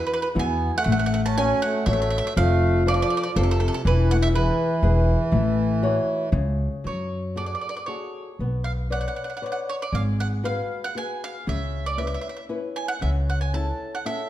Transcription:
Already playing: nylon-string guitar E4 F#4 G#4
0.07 mandolin B4
0.14 mandolin B4
0.22 mandolin B4
0.35 upright bass E2, accordion B3, nylon-string guitar E4 F#4 G#4
0.39 mandolin G#5
0.75 accordion A3, mandolin F#5
0.84 upright bass A1, nylon-string guitar A3, mandolin F#5
0.92 mandolin F#5
0.99 mandolin F#5
1.06 mandolin F#5
1.14 mandolin F#5
1.26 accordion C#4, mandolin A5
1.37 accordion C#4, nylon-string guitar F#4 A4 C#5, mandolin G#5
1.62 accordion A3, mandolin F#5
1.86 upright bass A1, accordion A3, nylon-string guitar F#4 A4 C#5, mandolin E5
1.93 mandolin E5
2.02 mandolin E5
2.10 mandolin E5
2.18 mandolin E5
2.27 mandolin E5
2.37 upright bass F1, nylon-string guitar F3, accordion A3, mandolin F5
2.86 accordion F3, nylon-string guitar F4 A4 C5, mandolin D5
2.94 mandolin D5
3.02 mandolin D5
3.10 mandolin D5
3.17 mandolin D5
3.23 mandolin D5
3.35 upright bass F1, accordion C3, nylon-string guitar F4 A4 C5, mandolin A4
3.43 mandolin A4
3.51 mandolin A4
3.60 mandolin A4
3.68 mandolin A4
3.74 mandolin A4
3.85 upright bass E1, nylon-string guitar E3, accordion E3, mandolin B4
4.11 accordion A3, mandolin F#5
4.22 accordion G#3, mandolin E5
4.33 accordion E3, nylon-string guitar E4 G#4 B4, mandolin B4
4.83 upright bass E1, nylon-string guitar E4 G#4 B4
5.32 upright bass A1, nylon-string guitar A3
5.82 nylon-string guitar F#4 A4 C#5
6.32 upright bass C#2, nylon-string guitar C#3
6.84 upright bass F#2, nylon-string guitar F#3, mandolin C#5
7.36 nylon-string guitar F#4 G#4 A4, mandolin D5
7.46 mandolin D5
7.55 mandolin D5
7.61 mandolin D5
7.69 mandolin D5
7.77 mandolin D5
7.86 nylon-string guitar F#4 G#4 A4, mandolin C#5
8.39 upright bass B1, nylon-string guitar B3
8.64 mandolin F5
8.90 nylon-string guitar B4 C#5 D5, mandolin F#5
9.01 mandolin F#5
9.08 mandolin F#5
9.16 mandolin F#5
9.24 mandolin F#5
9.30 mandolin F#5
9.37 mandolin F#5
9.42 nylon-string guitar B4 C#5 D5
9.46 mandolin F#5
9.52 mandolin F#5
9.69 mandolin C#5
9.82 mandolin D5
9.92 upright bass G#1, nylon-string guitar G#3, mandolin F5
10.20 mandolin F#5
10.43 nylon-string guitar F#4 G#4 B4, mandolin F5
10.84 mandolin F#5
10.95 nylon-string guitar F#4 G#4 B4, mandolin G#5
11.24 mandolin F5
11.47 upright bass C#2, nylon-string guitar C#3, mandolin E5
11.86 mandolin D5
11.97 nylon-string guitar C#4 E4 B4, mandolin E5
12.07 mandolin E5
12.14 mandolin E5
12.21 mandolin E5
12.29 mandolin E5
12.37 mandolin E5
12.49 nylon-string guitar C#4 E4 B4
12.76 mandolin G#5
12.88 mandolin F#5
13.01 upright bass C#2, nylon-string guitar C#3, mandolin E5
13.30 mandolin F#5
13.41 mandolin G#5
13.53 nylon-string guitar C#4 E4 A4, mandolin A5
13.95 mandolin F#5
14.05 nylon-string guitar C#4 E4 A4, mandolin E5

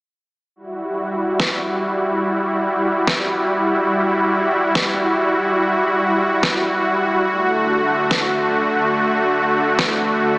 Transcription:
0.56 supersaw synth G3 E4 F#4
1.40 snare
3.07 snare
4.75 snare
6.43 snare
7.27 supersaw synth D3 A3
8.11 snare
9.79 snare

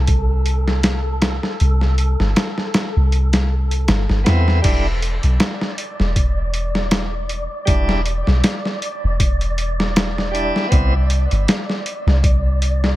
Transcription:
Already playing: 808-style bass C2, synth texture A4
0.07 kick, closed hi-hat
0.46 closed hi-hat
0.68 snare
0.83 snare, closed hi-hat
1.22 snare, closed hi-hat
1.43 snare
1.60 808-style bass C2, closed hi-hat
1.81 snare
1.98 closed hi-hat
2.20 808-style bass G1, snare
2.36 snare, closed hi-hat
2.58 snare
2.74 snare, closed hi-hat
2.96 808-style bass C2
3.12 closed hi-hat
3.33 snare, closed hi-hat
3.71 closed hi-hat
3.88 808-style bass G1, snare, closed hi-hat
4.10 808-style bass G1, snare
4.24 808-style bass E2, tonewheel organ B3 C4 E4, snare, closed hi-hat
4.48 snare
4.62 808-style bass E1, tonewheel organ G3 D4 E4, synth texture D5, kick, closed hi-hat, crash
5.02 closed hi-hat
5.23 808-style bass B1, closed hi-hat
5.40 snare, closed hi-hat
5.61 snare
5.78 closed hi-hat
6.00 808-style bass E1, snare
6.16 kick, closed hi-hat
6.54 closed hi-hat
6.75 snare
6.91 snare, closed hi-hat
7.29 closed hi-hat
7.65 808-style bass E1, tonewheel organ G3 D4 E4, kick, closed hi-hat
7.89 snare
8.06 closed hi-hat
8.27 808-style bass B1, snare
8.44 snare, closed hi-hat
8.65 snare
8.82 closed hi-hat
9.04 808-style bass E1
9.20 kick, closed hi-hat
9.41 closed hi-hat
9.58 closed hi-hat
9.80 snare
9.96 snare, closed hi-hat
10.18 snare
10.31 tonewheel organ G3 D4 E4, closed hi-hat
10.56 snare
10.69 808-style bass C2, tonewheel organ B3 C4 E4, kick, closed hi-hat
11.10 closed hi-hat
11.31 808-style bass G1, closed hi-hat
11.48 snare, closed hi-hat
11.70 snare
11.86 closed hi-hat
12.06 808-style bass C2, snare
12.24 kick, closed hi-hat
12.62 closed hi-hat
12.84 snare

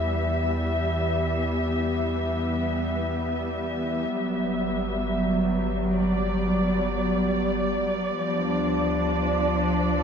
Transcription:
Already playing: sub bass E2, string section E3 G3 B3 E5
4.10 sub bass G1, string section F#3
5.92 string section D5
8.16 sub bass D2, string section F3
8.33 string section D4
9.97 string section A4

